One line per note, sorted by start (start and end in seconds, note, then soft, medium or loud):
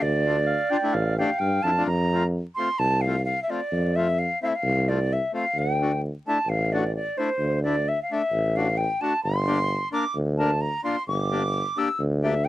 0.02 0.57 D2 medium
0.02 1.17 D5 medium
0.26 0.37 A3 medium
0.26 0.37 D4 medium
0.26 0.37 F4 medium
0.47 0.72 F5 medium
0.70 0.77 D4 medium
0.70 0.77 F4 loud
0.70 0.95 G5 loud
0.83 0.94 A3 medium
0.83 0.94 D4 medium
0.83 0.94 E4 medium
0.94 1.22 A1 loud
0.94 1.17 F5 medium
1.17 1.30 A3 medium
1.17 1.30 D4 medium
1.17 1.30 G4 medium
1.17 1.40 F5 medium
1.17 1.39 G5 medium
1.38 1.61 G2 medium
1.38 1.83 F5 medium
1.38 1.64 G5 medium
1.62 1.84 F2 medium
1.62 1.70 D4 medium
1.62 1.85 A5 medium
1.66 1.70 E4 medium
1.78 1.88 A3 medium
1.78 1.88 D4 medium
1.78 1.88 F4 medium
1.85 2.42 F2 medium
1.85 2.24 A#5 loud
2.13 2.23 A3 medium
2.13 2.23 C4 medium
2.13 2.23 F4 medium
2.55 2.69 A3 medium
2.55 2.80 C6 medium
2.59 2.69 C4 medium
2.59 2.69 F4 medium
2.78 3.34 C2 medium
2.78 3.02 A5 loud
3.01 3.24 F5 medium
3.06 3.16 A3 medium
3.06 3.16 C4 medium
3.06 3.16 F4 medium
3.24 3.40 F5 medium
3.42 3.51 E5 medium
3.49 3.60 A3 medium
3.49 3.61 C4 medium
3.49 3.60 F4 medium
3.49 3.97 D5 medium
3.72 4.27 F2 medium
3.95 4.07 A3 medium
3.95 4.07 C4 medium
3.95 4.07 F4 medium
3.95 4.20 E5 medium
4.18 4.41 F5 medium
4.41 4.53 A3 medium
4.41 4.53 C4 medium
4.41 4.53 E4 medium
4.41 4.48 F5 medium
4.47 4.56 E5 medium
4.55 4.89 F5 medium
4.64 5.19 C2 loud
4.88 4.99 A3 medium
4.88 4.99 C4 soft
4.88 4.99 F4 medium
4.88 5.14 D5 medium
5.12 5.34 E5 medium
5.33 5.45 A3 medium
5.33 5.45 C4 medium
5.33 5.45 F4 medium
5.33 5.59 F5 medium
5.55 6.11 D2 medium
5.55 6.00 G5 medium
5.81 5.92 A3 medium
5.81 5.92 D4 medium
5.81 5.92 F#4 medium
6.26 6.38 A3 medium
6.26 6.38 D4 medium
6.26 6.38 E4 medium
6.26 6.50 A5 medium
6.47 7.03 A1 medium
6.47 6.73 F5 medium
6.72 6.84 A3 medium
6.72 6.84 D4 medium
6.72 6.84 F#4 medium
6.72 6.94 D5 medium
6.95 7.19 D5 medium
7.17 7.29 A3 medium
7.17 7.29 D4 medium
7.17 7.29 E4 medium
7.17 7.62 C5 medium
7.39 7.95 D2 medium
7.62 7.76 A3 medium
7.62 7.76 D4 medium
7.62 7.76 E4 medium
7.62 7.89 D5 medium
7.88 8.01 E5 medium
8.02 8.13 F5 medium
8.11 8.22 A3 medium
8.11 8.22 D4 medium
8.11 8.22 A4 medium
8.11 8.57 E5 medium
8.31 8.87 A1 medium
8.55 8.67 A3 medium
8.55 8.67 D4 soft
8.55 8.68 F#4 medium
8.55 8.78 F5 medium
8.77 9.02 G5 medium
9.00 9.13 A3 medium
9.00 9.13 D4 medium
9.00 9.13 F#4 medium
9.00 9.22 A5 medium
9.23 9.80 G1 medium
9.23 9.88 C6 loud
9.47 9.59 A#3 medium
9.47 9.59 D4 medium
9.47 9.59 G4 medium
9.92 10.05 A#3 medium
9.92 10.04 D4 medium
9.92 10.04 A#4 medium
9.92 10.14 D6 medium
10.15 10.71 D2 medium
10.37 10.51 A#3 medium
10.37 10.51 D4 medium
10.37 10.51 A#4 medium
10.37 10.62 A5 medium
10.60 10.83 A#5 medium
10.83 10.96 A#3 medium
10.83 10.96 D4 soft
10.83 10.96 F4 medium
10.83 11.06 C6 medium
11.07 11.63 G1 medium
11.07 11.79 D6 medium
11.31 11.43 A#3 medium
11.31 11.43 D4 medium
11.31 11.43 G4 medium
11.77 11.88 A#3 medium
11.77 11.88 D4 medium
11.77 11.89 G4 medium
11.77 12.00 E6 medium
11.99 12.48 D2 loud
12.22 12.34 A#3 medium
12.22 12.34 D4 medium
12.22 12.34 G4 medium
12.22 12.46 E5 medium
12.44 12.48 G5 medium